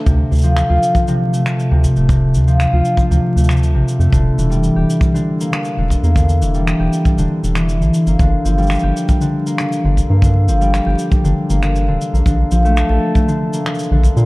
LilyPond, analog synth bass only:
\new Staff \with { instrumentName = "Analog synth bass" } { \clef bass \time 4/4 \key d \minor \tempo 4 = 118 d,16 r16 d,8. d,16 r4. r16 d,16 r16 d,,16~ | d,,8 d,8. d,16 r8 d,16 r16 d,8. a,,16 r16 f,16 | e,,16 r16 e,,8. e,,16 r4. r16 e,,16 r16 e,16~ | e,8 e,,8. e,,16 r8 e,,16 r16 e,,8. bes,,16 r16 g,,16 |
g,,16 r16 g,,8. g,,16 r4. r16 g,,16 r16 g,16~ | g,8 g,,8. g,,16 r8 g,,16 r16 g,,8. d,,16 r16 bes,,16 | bes,,16 r16 bes,,8. bes,,16 r4. r16 bes,,16 r16 bes,16 | }